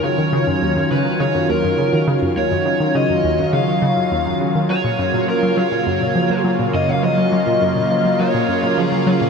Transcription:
<<
  \new Staff \with { instrumentName = "Lead electric guitar" } { \time 4/4 \key ees \minor \tempo 4 = 103 des''4. ces''8 des''8 bes'4 r8 | des''4 ees''4 f''4. r8 | des''4 bes'8 des''4. r8 ees''16 f''16 | ees''2 des''4 aes'4 | }
  \new Staff \with { instrumentName = "Analog synth pad" } { \time 4/4 \key ees \minor << { <ees des' f'>1~ | <ees des' f'>1 | <des bes f'>1~ | <des bes f'>1 | } \\ { ges1~ | ges1~ | ges1~ | ges1 | } >> }
  \new Staff \with { instrumentName = "Synth arpeggio sound" } { \clef bass \time 4/4 \key ees \minor des16 ees16 des16 ges,16 ees,16 ges,16 des16 ees16 des16 ges,16 ees,16 ges,16 des16 ees16 des16 ges,16 | ees,16 ges,16 des16 ees16 des16 ges,16 ees,16 ges,16 des16 ees16 des16 ges,16 ees,16 ges,16 des16 ees16 | ges16 bes,16 ges,16 bes,16 f16 ges16 ges16 bes,16 ges,16 bes,16 f16 ges16 ges16 bes,16 ges,16 bes,16 | f16 ges16 ges16 bes,16 ges,16 bes,16 f16 ges16 ges16 bes,16 ges,16 bes,16 f16 ges16 ges16 bes,16 | }
>>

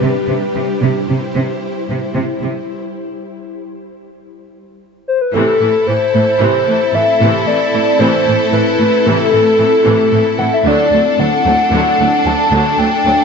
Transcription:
<<
  \new Staff \with { instrumentName = "Soft synth lead" } { \time 5/4 \key c \major \tempo 4 = 113 r1 r4 | r1 r8 c''16 b'16 | \key a \dorian a'4 c''2 e''4 d''4 | c''4 b'4 a'2~ a'8 fis''16 e''16 |
d''4 fis''2 a''4 g''4 | }
  \new Staff \with { instrumentName = "Violin section" } { \time 5/4 \key c \major r1 r4 | r1 r4 | \key a \dorian <e' a'>1~ <e' a'>4~ | <e' a'>1~ <e' a'>4 |
<d' a'>1~ <d' a'>4 | }
  \new Staff \with { instrumentName = "Synth drone" } { \time 5/4 \key c \major <g e' g' c''>1~ <g e' g' c''>4 | r1 r4 | \key a \dorian <a c' e' a'>1~ <a c' e' a'>4~ | <a c' e' a'>1~ <a c' e' a'>4 |
<a d' a'>1~ <a d' a'>4 | }
  \new Staff \with { instrumentName = "Viola section" } { \clef bass \time 5/4 \key c \major r1 r4 | r1 r4 | \key a \dorian <c e>8 <e a>8 e8 <e a>8 <c e>8 <e a>8 e8 <c e>8 <e a>8 e8 | <c e>8 <e a>8 e8 <e a>8 <c e>8 <e a>8 e8 <c e>8 <e a>8 e8 |
<d fis>8 <fis a>8 fis8 <fis a>8 <d fis>8 <fis a>8 fis8 <d fis>8 <fis a>8 fis8 | }
  \new Staff \with { instrumentName = "Cello section" } { \clef bass \time 5/4 \key c \major c8 c8 c8 c8 c8 c8 r8 c8 c8 c8 | r1 r4 | \key a \dorian a,8 a,8 a,8 a,8 a,8 a,8 a,8 a,8 a,8 a,8 | a,8 a,8 a,8 a,8 a,8 a,8 a,8 a,8 a,8 a,8 |
d,8 d,8 d,8 d,8 d,8 d,8 d,8 d,8 d,8 d,8 | }
>>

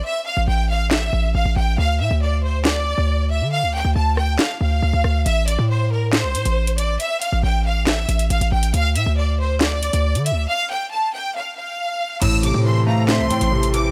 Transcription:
<<
  \new Staff \with { instrumentName = "Flute" } { \time 4/4 \key a \minor \tempo 4 = 138 r1 | r1 | r1 | r1 |
r1 | r1 | r1 | r4. f''8 e''8 g''8 r4 | }
  \new Staff \with { instrumentName = "Violin section" } { \time 4/4 \key a \minor e''8 f''8 g''8 f''8 e''4 f''8 g''8 | f''8 e''8 d''8 c''8 d''4. e''8 | f''8 g''8 a''8 g''8 f''8 f''4. | e''8 d''8 c''8 bes'8 c''4. d''8 |
e''8 f''8 g''8 f''8 e''4 f''8 g''8 | f''8 e''8 d''8 c''8 d''4. e''8 | f''8 g''8 a''8 g''8 f''8 f''4. | e'''8 d'''8 c'''8 bes''8 c'''4. d'''8 | }
  \new Staff \with { instrumentName = "String section" } { \time 4/4 \key a \minor r1 | r1 | r1 | r1 |
r1 | r1 | r1 | <e a c' a'>1 | }
  \new Staff \with { instrumentName = "Grand piano" } { \clef bass \time 4/4 \key a \minor r1 | r1 | r1 | r1 |
r1 | r1 | r1 | a,8 c8 e8 a8 c'8 a,8 c8 e8 | }
  \new Staff \with { instrumentName = "808-style bass" } { \clef bass \time 4/4 \key a \minor r8. a,,16 a,,4. a,,8 a,,16 a,,16 a,,8 | d,8 a,16 d,2 d,4 d16~ | d16 d,8 d,16 d,4 r8 d,8 d,16 d,16 d,8 | a,,8. a,4. c,16 a,16 a,,4~ a,,16 |
r8. a,,16 a,,4. a,,8 a,,16 a,,16 a,,8 | d,8 a,16 d,2 d,8 d16. d,16. | r1 | a,,8. a,4. c,16 a,16 a,,4~ a,,16 | }
  \new DrumStaff \with { instrumentName = "Drums" } \drummode { \time 4/4 r4 r4 <hc sn>4 r4 | r4 r4 <hc sn>4 r4 | r4 r8 ss8 <hc sn>4 r8 ss8 | hh8 hh8 r4 <hc sn>8 hh16 hh16 r16 hh16 hh8 |
hh8 hh8 r4 <hc sn>8 hh16 hh16 hh16 hh8 hh16 | hh8 hh8 r4 <hc sn>8 hh16 hh16 r16 hh16 hh8 | r4 r4 r4 r4 | <cymc hh>8 hh8 r4 <hc sn>8 hh16 hh16 r16 hh16 hh8 | }
>>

